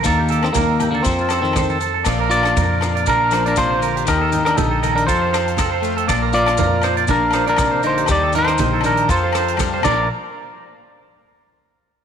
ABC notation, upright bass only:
X:1
M:4/4
L:1/8
Q:"Swing 16ths" 1/4=120
K:Bb
V:1 name="Upright bass" clef=bass
E,,2 E,,2 F,,4 | B,,,2 F,,2 B,,,4 | E,,2 B,,,2 F,,4 | B,,,2 F,,2 B,,,4 |
E,,2 B,,,2 F,,3 B,,, | z8 |]